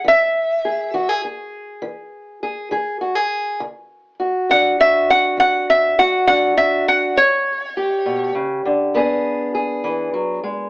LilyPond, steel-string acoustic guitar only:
\new Staff \with { instrumentName = "Steel-string acoustic guitar" } { \time 12/8 \key e \mixolydian \tempo 4. = 67 << { r4 gis'8 fis'16 gis'16 gis'2 gis'8 gis'8 fis'16 gis'8. | r4 fis'8 d'8 fis'2 fis'8 d'8 fis'4 | r4 g'2 <b d' gis'>4 gis'2 | } \\ { e4 r8 e4 r8 e4 r8 e4 r8 | d4 r8 d4 r8 d4 r8 d4 r8 | a,4 r8 b,8 cis8 d8 e4 r8 e8 fis8 gis8 | } >> }